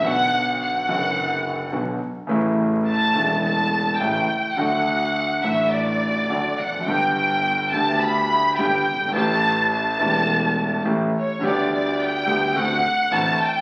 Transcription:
<<
  \new Staff \with { instrumentName = "Violin section" } { \time 4/4 \key g \major \tempo 4 = 106 fis''4 fis''2 r4 | r4 a''4 a''4 g''4 | fis''4. e''8 d''4. fis''8 | g''8 g''4 a''8 b''4 g''4 |
a''4 a''2 r8 cis''8 | d''8 d''8 g''4 fis''4 a''8 g''8 | }
  \new Staff \with { instrumentName = "Grand piano" } { \clef bass \time 4/4 \key g \major <b,, b, d fis b fis'>4. <fis,, fis, d fis b fis'>4. <b,, b, d fis b fis'>8 r8 | <a,, a, cis e a e'>4. <e,, e, cis e a e'>4. <a,, a, cis e a e'>8 r8 | <d, d fis a fis'>4. <a,, a, d fis a fis'>4. <d, d fis a fis'>8 r32 e,32 f,32 fis,32 | <g,, g, d g b g'>4. <d, d g b g'>4. <g,, g, d g b g'>8 r32 fis,,32 g,,32 aes,,32 |
<a,, a, e a cis' g'>4. <e,, e, e a cis' g'>4. <a,, a, e a cis' g'>8 r8 | <d, d g b g'>4. <d, d g b g'>8 <d, d a c' fis'>8 r8 <a,, a, d a c' fis'>8 r8 | }
  \new Staff \with { instrumentName = "Double bass" } { \clef bass \time 4/4 \key g \major b,,4. fis,,4. b,,8 r8 | a,,4. e,,4. a,,8 r8 | d,4. a,,4. d,8 f,,8 | g,,4. d,4. g,,8 g,,8 |
a,,4. e,,4. a,,8 r8 | d,4. d,8 d,8 r8 a,,8 r8 | }
>>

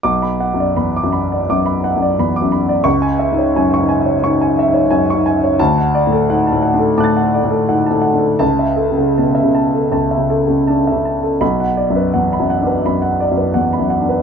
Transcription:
<<
  \new Staff \with { instrumentName = "Grand piano" } { \time 4/4 \key b \dorian \tempo 4 = 85 << { d'''8 r2. r8 | cis'''8 r2. r8 | a''8 r4. <d''' fis''' a'''>2 | a''8 r2. r8 |
b''8 r2. r8 | } \\ { r16 b''16 fis''16 d''16 b''16 d'''16 b''16 d''16 d'''16 b''16 fis''16 d''16 b''16 d'''16 b''16 d''16 | r16 gis''16 e''16 cis''16 gis''16 cis'''16 gis''16 cis''16 cis'''16 gis''16 e''16 cis''16 gis''16 cis'''16 gis''16 cis''16 | r16 fis''16 d''16 a'16 fis''16 a''16 fis''16 a'16 a''16 fis''16 d''16 a'16 fis''16 a''16 fis''16 a'16 | r16 e''16 a'16 cis16 a''16 e''16 a''16 a'16 a''16 e''16 a'16 cis16 a''16 e''16 a''16 a'16 |
r16 fis''16 d''16 b'16 fis''16 b''16 fis''16 b'16 b''16 fis''16 d''16 b'16 fis''16 b''16 fis''16 b'16 | } >> }
  \new Staff \with { instrumentName = "Grand piano" } { \clef bass \time 4/4 \key b \dorian \tuplet 3/2 { b,,4 fis,8 e,8 fis,4 fis,4 fis,8 e,8 fis,4 } | \tuplet 3/2 { cis,4 gis,8 fis,8 gis,4 gis,4 gis,8 fis,8 gis,4 } | \tuplet 3/2 { d,4 a,8 gis,8 a,8 d'8 a,4 a,8 gis,8 a,8 d'8 } | \tuplet 3/2 { cis,4 cis8 b,8 cis4 cis,8 cis4 d'8 cis4 } |
\tuplet 3/2 { b,,4 fis,8 e,8 fis,8 d'8 fis,4 fis,8 e,8 fis,8 d'8 } | }
>>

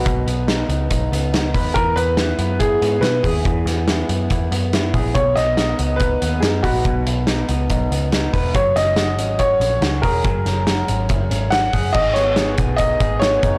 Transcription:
<<
  \new Staff \with { instrumentName = "Upright piano" } { \time 4/4 \key b \major \tempo 4 = 141 fis'8 r2. r8 | ais'8 b'4. gis'4 b'8 gis'8~ | gis'8 r2. r8 | cis''8 dis''4. b'4 gis'8 fis'8~ |
fis'8 r2. r8 | cis''8 dis''4. cis''4. ais'8~ | ais'2. fis''4 | dis''8 cis''4 r8 dis''4 cis''4 | }
  \new Staff \with { instrumentName = "Clean electric guitar" } { \time 4/4 \key b \major <b, b dis' b'>8 b8 dis'8 b8 dis'8 b8 dis'8 b'8 | e8 b8 e'8 b8 e'8 b8 e'8 gis'8 | e8 b8 e'8 b8 e'8 b8 e'8 gis'8 | b,8 b8 dis'8 b8 dis'8 b8 dis'8 b'8 |
b,8 b8 dis'8 b8 dis'8 b8 dis'8 b'8 | fis8 cis'8 fis'8 cis'8 fis'8 cis'8 fis'8 gis'8 | fis8 cis'8 fis'8 cis'8 e'16 fis'16 cis'8 fis'8 gis'8 | gis,8 b8 gis'8 b8 dis'8 gis'8 b8 dis'8 | }
  \new Staff \with { instrumentName = "Picked electric bass" } { \clef bass \time 4/4 \key b \major b,,8 b,,4 cis,8 b,,8 cis,4 dis,8 | e,8 e,4 fis,4 gis,8 b,8 dis,8 | e,8 e,4 fis,8 e,8 fis,4 ais,,8 | b,,8 b,,4 cis,4 dis,8 fis,8 ais,,8 |
b,,8 b,,4 cis,8 b,,8 cis,4 e,,8 | fis,,8 fis,,4 gis,,4 ais,,8 cis,8 e,,8 | fis,,8 fis,,4 gis,,8 fis,,8 gis,,4 fis,,8 | gis,,4. b,,4 gis,,4 fis,,8 | }
  \new DrumStaff \with { instrumentName = "Drums" } \drummode { \time 4/4 <hh bd>8 hh8 <hh sn>8 hh8 <hh bd>8 hh8 <hh sn>8 <hho bd>8 | <hh bd>8 hh8 <hh sn>8 hh8 <hh bd>8 hh8 <hh sn>8 <hho bd>8 | <hh bd>8 <hh sn>8 <hh sn>8 hh8 <hh bd>8 hh8 <hh sn>8 <hho bd>8 | <hh bd>8 <hh sn>8 <hh sn>8 hh8 <hh bd>8 hh8 <hh sn>8 <hho bd>8 |
<hh bd>8 hh8 <hh sn>8 hh8 <hh bd>8 hh8 <hh sn>8 <hho bd>8 | <hh bd>8 <hh sn>8 <hh sn>8 hh8 <hh bd>8 hh8 <hh sn>8 <hho bd>8 | <hh bd>8 <hh sn>8 <hh sn>8 hh8 <hh bd>8 hh8 <hh sn>8 <hho bd>8 | <cymc bd>8 <hh sn>8 <hh sn>8 <hh bd>8 <hh bd>8 <hh bd>8 <hh sn>8 <hh bd>8 | }
>>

